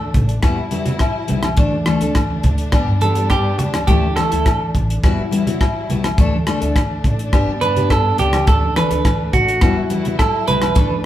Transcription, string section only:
Already playing: E3 A3 D4
0.43 F#3 G3 E4
1.58 E3 A3 D4
2.72 G3 B3
3.87 E3 A3
5.02 F#3 G3 E4
6.18 E3 A3 D4
7.33 G3 B3
8.47 E3 A3
9.62 F#3 G3 E4
10.76 E3 A3 D4

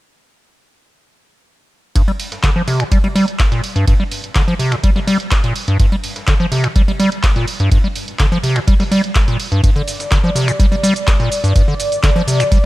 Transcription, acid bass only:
1.95 G2
2.08 G3
2.43 D3
2.56 F3
2.68 C3
2.80 A#2
2.92 G3
3.04 G3
3.15 G3
3.52 A#2
3.76 G2
4.00 G3
4.36 D3
4.48 F3
4.59 C3
4.72 A#2
4.83 G3
4.96 G3
5.07 G3
5.44 A#2
5.68 G2
5.80 G2
5.92 G3
6.28 D3
6.40 F3
6.52 C3
6.64 A#2
6.76 G3
6.88 G3
7.00 G3
7.36 A#2
7.60 G2
7.84 G3
8.20 D3
8.32 F3
8.43 C3
8.56 A#2
8.68 G3
8.80 G3
8.92 G3
9.28 A#2
9.52 G2
9.63 G2
9.76 D3
10.11 D3
10.24 F3
10.35 C3
10.48 A#2
10.59 G3
10.72 G3
10.83 G3
11.20 A#2
11.44 G2
11.55 G2
11.68 D3
12.03 D3
12.16 F3
12.28 C3
12.40 A#2
12.51 G3

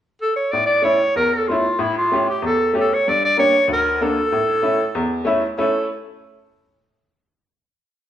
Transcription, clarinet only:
0.22 A4
0.36 C#5
0.52 D5
0.66 D5
0.84 C#5
1.16 A#4
1.33 A4
1.48 F4
1.82 E4
1.98 F4
2.30 G4
2.46 A4
2.80 A4
2.94 C#5
3.09 D5
3.25 D5
3.39 C#5
3.73 A#4
4.03 A4
5.60 A4

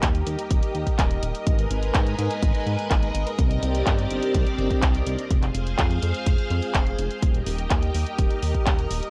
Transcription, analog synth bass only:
0.03 D#2
0.27 D#2
0.51 D#1
0.75 D#2
0.99 D#1
1.23 D#1
1.47 G#1
1.71 G#1
1.95 G#2
2.19 G#2
2.43 G#1
2.67 G#2
2.91 G#1
3.15 G#1
3.39 C2
3.63 C2
3.87 G1
4.11 G1
4.35 C2
4.59 G1
4.83 C2
5.07 C2
5.31 F1
5.55 F1
5.79 F2
6.02 F2
6.27 F1
6.50 F2
6.75 F1
6.99 F1
7.23 D#1
7.47 D#1
7.71 D#2
7.95 D#2
8.19 D#1
8.43 D#2
8.67 D#1
8.91 D#1

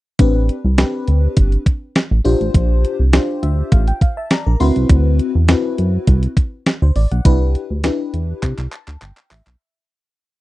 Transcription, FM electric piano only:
0.19 C4 D4 G4 B4
0.78 C4 D4 G4 B4
2.25 D4 F4 G4 C5
3.13 D4 F4 G4 C5
3.43 E5
3.72 F5
3.88 G5
4.01 F5
4.17 E5 A5
4.31 D5 A#5
4.46 A#4
4.60 C4 E4 F#4 B4 C6
5.48 C4 E4 F#4 B4
6.82 C5
6.96 D5
7.12 F#5
7.25 D4 E4 G4 B4
7.84 D4 E4 G4 B4
8.72 A5
9.01 G5
9.31 E5

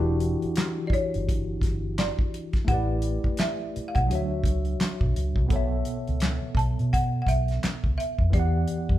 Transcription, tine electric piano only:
Already playing: E3 D4 E4 F#4 G4
2.65 A3 E4
2.70 G4 B4
2.74 D5
4.06 F#3 D4
4.11 F#4 C#5
4.15 E5
5.46 B2 B3
5.51 A4 C#5
5.56 E5
8.30 E3 B3
8.35 G4 D5
8.39 F#5

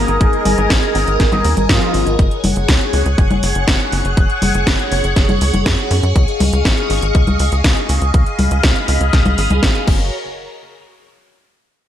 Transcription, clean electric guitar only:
0.08 B3 D#4 G#4 A#4
0.20 B3 D#4 G#4 A#4
0.57 B3 D#4 G#4 B4
0.95 B3 D#4 G#4 A#4
1.32 B3 D#4 G#4 A#4
1.69 B3 D#4 G#4 A#4
1.81 B3 D#4 G#4 A#4

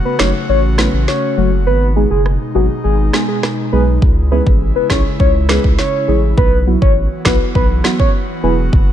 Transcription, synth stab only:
0.20 F#3 A3 C#4 D#4
0.79 F#3 A3 C#4 E4
1.37 F#3 A3 C#4 F#4
1.96 G#3 B3 D#4 G#4
2.55 G#3 B3 D#4 G#4
3.14 G#3 B3 D#4 G#4
3.73 G#3 B3 D#4 G#4
4.31 G#3 C#4 E4 G#4
4.90 G#3 C#4 E4 G#4
5.49 G#3 C#4 E4 G#4
6.08 G#3 C#4 E4 G#4
6.67 F#3 B3 E4 F#4
7.26 F#3 B3 E4 F#4
7.84 F#3 B3 E4 F#4
8.43 F#3 B3 E4 G#4

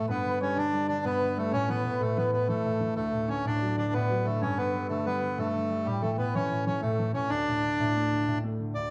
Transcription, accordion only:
0.09 B3
0.42 C#4
0.58 D4
0.88 D4
1.05 B3
1.38 A3
1.52 C#4
1.69 B3
2.01 A3
2.17 B3
2.32 B3
2.48 A3
2.96 A3
3.29 C#4
3.46 D4
3.78 D4
3.93 B3
4.25 A3
4.41 C#4
4.57 B3
4.89 A3
5.06 B3
5.38 A3
5.86 G3
6.02 A3
6.18 B3
6.35 C#4
6.66 C#4
6.82 A3
7.14 C#4
7.30 D4
8.75 D5

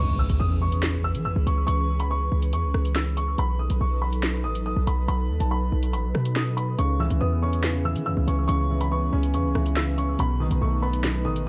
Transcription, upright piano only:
Already playing: C#6
0.19 E6
0.40 D#6
0.62 C#6
1.04 E6
1.25 E6
1.47 C#6
1.67 C#6
2.00 B5
2.11 C#6
2.53 C#6
2.96 E6
3.17 C#6
3.39 B5
3.59 D#6
3.81 C#6
4.02 B5
4.44 D#6
4.66 D#6
4.87 B5
5.08 B5
5.40 A5
5.51 B5
5.93 B5
6.36 D#6
6.57 B5
6.78 C#6
7.00 E6
7.21 D#6
7.42 C#6
7.85 E6
8.06 E6
8.28 C#6
8.48 C#6
8.81 B5
8.92 C#6
9.34 C#6
9.77 E6
9.98 C#6
10.20 B5
10.40 D#6
10.62 C#6
10.82 B5
11.25 D#6

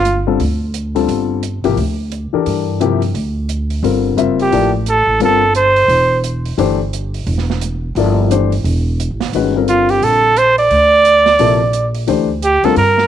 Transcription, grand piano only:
0.27 D3 G3 C4 F4 A4
0.95 D3 G3 C4 F4 A4
1.64 C3 F3 A#3 E4 G4
2.33 E3 D4 G4 A4 A#4
2.81 C3 F3 A#3 E4 G4
3.83 D3 G3 C4 F4 A#4
4.17 G3 C4 F4 A#4 E5
4.52 F3 A#3 E4 A4 D5
5.21 D3 G3 C4 F4 A#4
6.58 E3 A3 D4 G4 C5
7.97 F3 A#3 E4 A4 D5
8.30 E3 A3 D4 G4 C5
9.34 D#3 G#3 C#4 F#4 B4
9.56 D3 G3 C4 F4 A#4
11.39 C3 F3 A#3 E4 A4
12.07 E3 A3 D4 G4 C5
12.64 D3 G3 C4 F4 A#4

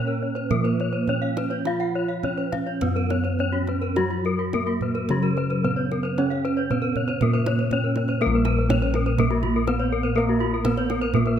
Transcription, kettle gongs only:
Already playing: A#4
0.51 F3
1.10 B3
1.67 F4
2.25 B3
2.82 F#2
3.39 B3
3.97 F#4
4.53 B3
5.10 C#3
5.65 B3
6.18 C#4
6.71 B3
7.22 A#2
7.72 B3
8.22 A#4
8.26 A#1
8.71 B3
9.68 B3
10.17 A#4
10.66 B3
11.14 A#2

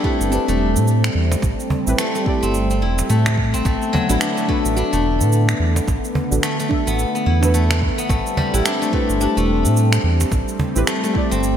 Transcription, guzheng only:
Already playing: G3 B3 D4 E4
0.04 A3
0.32 D4
0.48 A3
1.98 A3
2.15 A3
2.43 C4
2.71 C4
2.82 E4
3.10 A3
3.54 C4
3.65 A3
3.93 F#3
4.09 E4
4.21 D4
4.37 A3
4.49 A3
4.76 D4
4.93 A3
6.43 A3
6.59 A3
6.87 B3
7.15 B3
7.26 E4
7.54 A3
7.98 B3
8.09 A3
8.37 G3
8.54 E4
8.65 D4
8.82 A3
8.93 A3
9.21 D4
9.37 A3
10.87 A3
11.04 A3
11.31 C4

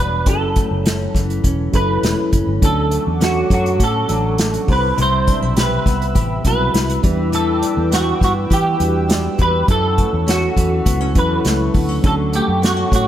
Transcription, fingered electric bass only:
Already playing: E1
0.26 F#1
0.71 F#1
1.14 F#1
1.44 E1
1.74 F#1
2.03 E1
2.33 F#1
2.47 G1
2.62 D2
3.07 E2
3.50 F#2
3.80 A2
4.10 A1
4.68 C2
4.98 C2
5.42 B1
5.86 C2
6.15 A1
6.45 B1
6.74 C2
7.04 E2
7.77 E2
8.22 G2
8.51 E3
8.80 E2
9.39 E2
9.68 F#2
10.13 E2
10.57 E2
10.86 C#2
11.16 E2
11.45 C#2
11.75 D2
12.04 D2
12.48 F#2
12.92 A2

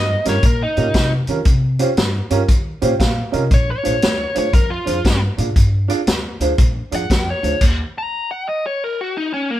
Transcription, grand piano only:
0.25 C#4 F4 G4 A#4
0.77 C#4 F4 G4 A#4
1.29 C#4 F4 G4 A#4
1.79 C#4 F4 G4 C5
2.31 C#4 F4 G4 A#4
2.82 C#4 F4 G4 C5 G5
2.99 F5
3.32 C#4 F4 G4 A#4 D#5
3.83 D4 F4 G#4 C5
4.35 D4 F4 G#4 C5
4.85 D4 F4 G#4 C5
5.37 D4 F4 G#4 D5
5.88 D4 F4 G#4 D5
6.41 D4 F4 G#4 C5
6.91 D4 F4 G#4 D5
7.43 D4 F4 G#4 C5

